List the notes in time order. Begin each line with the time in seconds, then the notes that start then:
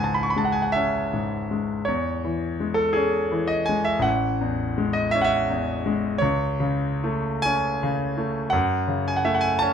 Already playing: C#2 G#2 F#5 G#5
0.04 A5
0.14 B5
0.23 C#6
0.30 B5
0.36 G#3 A5
0.45 F#5
0.52 G#5
0.62 F#5
0.72 C#4 E5
1.13 G#2
1.51 G#3
1.85 E2 C#5
2.24 E3
2.60 G#3
2.74 A4
2.93 C#4 G#4
3.32 E3
3.48 D#5
3.66 G#3 G#5
3.85 E5
3.99 A1 F#5
4.41 E2
4.78 G#3
4.93 D#5
5.11 C#4 E5
5.21 E5 F#5
5.50 E2
5.86 G#3
6.18 C#2 C#5
6.60 C#3
7.04 A3
7.42 C#4 G#5
7.83 C#3
8.17 A3
8.50 F#2 F#5
8.88 C#3
9.08 G#5
9.16 F#5
9.25 A3 E5
9.35 F#5
9.41 G#5
9.59 C#4 A5